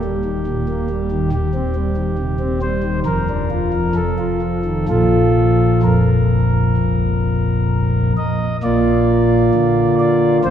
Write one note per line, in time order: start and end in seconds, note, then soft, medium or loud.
0.00 1.30 D#1 medium
0.00 1.30 D#2 medium
0.00 1.30 G4 medium
0.04 0.23 G3 medium
0.25 0.44 D#3 soft
0.47 0.66 A#2 medium
0.68 0.88 A#3 medium
0.90 1.09 G3 medium
1.11 1.30 D#3 medium
1.32 3.02 D#1 medium
1.32 3.03 D#2 medium
1.32 2.59 G4 loud
1.54 1.74 C4 medium
1.75 1.96 G3 medium
1.97 2.17 D#3 medium
2.19 2.39 C3 medium
2.39 2.60 C4 medium
2.62 2.82 G3 medium
2.62 3.00 C5 loud
2.83 3.03 D#3 medium
3.06 3.93 F1 medium
3.06 3.93 F2 medium
3.06 3.93 A#4 loud
3.29 3.49 D4 medium
3.51 3.71 F4 medium
3.73 3.93 F3 medium
3.95 4.86 F1 medium
3.95 4.86 F2 medium
3.95 4.86 A4 medium
4.18 4.39 F4 medium
4.42 4.63 F3 soft
4.65 4.85 D#3 soft
4.88 6.75 A#1 medium
4.88 8.13 A#2 medium
4.88 5.81 F3 soft
4.88 5.81 F4 medium
4.88 5.81 A4 loud
5.83 8.13 F1 medium
5.83 8.13 F2 medium
5.83 8.13 A#4 medium
6.77 8.13 A#1 medium
8.17 8.57 D#5 medium
8.63 9.52 A#1 medium
8.63 9.52 A#2 medium
8.63 10.40 A#3 soft
8.63 10.40 F4 soft
8.63 9.95 D5 medium
9.55 10.41 D3 medium
10.00 10.38 D5 medium
10.44 10.50 A1 medium
10.44 10.50 A2 medium
10.44 10.50 C4 soft
10.44 10.50 F4 soft
10.44 10.50 C5 medium